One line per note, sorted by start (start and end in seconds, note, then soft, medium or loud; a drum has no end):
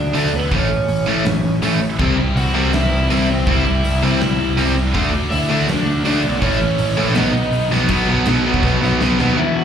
0.00 0.12 D2 medium
0.00 0.31 D4 medium
0.00 0.35 D5 medium
0.15 0.32 D2 medium
0.15 0.30 D3 medium
0.15 0.30 A3 medium
0.15 0.31 D4 loud
0.15 open hi-hat medium
0.34 0.50 D2 medium
0.34 0.52 B3 medium
0.34 0.54 B4 medium
0.51 0.68 A1 medium
0.51 0.67 A2 medium
0.51 0.68 E3 medium
0.51 0.68 A3 loud
0.51 1.78 C#4 medium
0.51 kick loud
0.51 open hi-hat medium
0.56 1.79 C#5 medium
0.70 0.87 A1 medium
0.88 1.05 A1 medium
0.88 open hi-hat medium
1.07 1.24 A1 loud
1.07 1.23 A2 medium
1.07 1.23 E3 medium
1.07 1.23 A3 loud
1.25 1.42 A1 medium
1.25 snare loud
1.25 open hi-hat medium
1.44 1.61 A1 medium
1.62 1.79 A1 medium
1.62 1.78 A2 medium
1.62 1.78 E3 medium
1.62 1.79 A3 loud
1.62 open hi-hat medium
1.81 1.98 A1 medium
1.99 2.16 C2 medium
1.99 2.15 C3 medium
1.99 3.46 E3 medium
1.99 2.15 G3 medium
1.99 2.16 C4 medium
1.99 3.48 E4 medium
1.99 kick loud
1.99 crash medium
2.19 2.35 C2 medium
2.36 2.53 C2 medium
2.36 2.72 F#4 medium
2.36 2.73 F#5 medium
2.36 open hi-hat medium
2.54 2.71 C2 medium
2.54 2.70 C3 medium
2.54 2.70 G3 medium
2.54 2.71 C4 medium
2.73 2.90 C2 medium
2.73 3.26 E4 medium
2.73 3.31 E5 medium
2.73 snare loud
2.73 open hi-hat medium
2.91 3.08 C2 medium
3.10 3.27 C2 medium
3.10 3.26 C3 loud
3.10 3.26 G3 medium
3.10 3.26 C4 medium
3.10 open hi-hat medium
3.29 3.46 C2 medium
3.29 3.48 C4 medium
3.29 3.49 C5 medium
3.46 3.63 C2 loud
3.46 3.63 C3 medium
3.46 4.93 E3 medium
3.46 3.63 G3 loud
3.46 3.63 C4 medium
3.46 4.73 E4 medium
3.46 4.95 E4 medium
3.46 4.73 E5 medium
3.46 kick loud
3.46 open hi-hat medium
3.66 3.83 C2 medium
3.84 4.01 C2 medium
3.84 open hi-hat medium
4.03 4.20 C2 loud
4.03 4.18 C3 medium
4.03 4.18 G3 loud
4.03 4.18 C4 loud
4.20 4.38 C2 medium
4.20 snare loud
4.20 open hi-hat medium
4.40 4.56 C2 medium
4.58 4.75 C2 medium
4.58 4.73 C3 medium
4.58 4.74 G3 medium
4.58 4.74 C4 loud
4.58 open hi-hat medium
4.77 4.93 C2 medium
4.94 5.11 D2 medium
4.94 5.10 D3 medium
4.94 5.10 A3 medium
4.94 5.10 D4 loud
4.94 6.43 F#4 loud
4.94 kick loud
4.94 open hi-hat medium
5.13 5.30 D2 medium
5.31 5.48 D2 medium
5.31 5.67 E4 medium
5.31 5.70 E5 loud
5.31 open hi-hat medium
5.50 5.67 D2 medium
5.50 5.65 D3 medium
5.50 5.66 A3 loud
5.50 5.66 D4 medium
5.68 5.85 D2 medium
5.68 6.04 D4 medium
5.68 6.03 D5 medium
5.68 snare loud
5.68 open hi-hat medium
5.86 6.03 D2 medium
6.04 6.21 D2 medium
6.04 6.21 D3 loud
6.04 6.21 A3 medium
6.04 6.40 D4 medium
6.04 6.22 D4 loud
6.04 6.39 D5 medium
6.04 open hi-hat medium
6.24 6.40 B1 medium
6.39 6.58 A1 loud
6.39 6.58 A2 loud
6.39 6.58 E3 medium
6.39 7.13 C#4 medium
6.39 7.11 C#5 loud
6.39 kick loud
6.39 open hi-hat medium
6.44 6.58 A3 loud
6.44 7.16 C#4 medium
6.44 7.17 E4 loud
6.60 6.77 A1 medium
6.78 6.96 A1 medium
6.78 open hi-hat medium
6.97 7.14 A#1 loud
6.97 7.13 A2 medium
6.97 7.13 E3 loud
6.97 7.13 A3 loud
7.14 7.33 B1 medium
7.14 7.30 B2 medium
7.14 7.89 D#3 medium
7.14 7.31 F#3 medium
7.14 7.31 B3 loud
7.14 7.68 D#4 medium
7.14 7.90 D#4 medium
7.14 7.67 D#5 medium
7.14 snare loud
7.14 open hi-hat medium
7.34 7.51 B1 medium
7.52 7.69 B1 medium
7.52 open hi-hat medium
7.71 7.87 B1 medium
7.71 7.87 B2 medium
7.71 7.87 F#3 medium
7.71 7.87 B3 medium
7.71 snare medium
7.89 8.06 B1 medium
7.89 8.07 B2 medium
7.89 8.08 F#3 loud
7.89 8.09 B3 medium
7.89 8.08 D#4 loud
7.89 kick loud
7.89 crash loud
7.89 crash medium
8.08 8.25 B1 medium
8.08 8.26 B2 medium
8.08 8.26 F#3 medium
8.08 8.26 B3 loud
8.08 8.26 D#4 medium
8.26 8.60 B1 medium
8.26 8.45 B2 loud
8.26 8.45 F#3 medium
8.26 8.46 B3 loud
8.26 8.45 D#4 medium
8.26 snare loud
8.26 crash medium
8.46 8.62 B2 medium
8.46 8.63 F#3 medium
8.46 8.63 B3 medium
8.46 8.63 D#4 loud
8.54 kick medium
8.63 8.80 B1 medium
8.63 8.80 B2 medium
8.63 8.81 F#3 medium
8.63 8.81 B3 loud
8.63 8.81 D#4 loud
8.63 kick loud
8.63 snare medium
8.81 8.99 B1 medium
8.81 8.99 B2 medium
8.81 9.00 F#3 medium
8.81 9.00 B3 loud
8.81 9.00 D#4 medium
8.81 snare medium
9.00 9.17 B1 loud
9.00 9.18 B2 medium
9.00 9.18 F#3 medium
9.00 9.19 B3 loud
9.00 9.19 D#4 loud
9.00 snare loud
9.19 9.36 D#2 medium
9.19 9.36 B2 medium
9.19 9.37 F#3 medium
9.19 9.37 B3 medium
9.19 9.37 D#4 medium
9.19 snare medium
9.37 9.64 E2 medium
9.37 9.64 B2 loud
9.37 9.64 E3 loud
9.37 9.54 E4 medium
9.37 9.56 E5 loud
9.56 9.64 F#4 medium
9.56 9.64 F#5 medium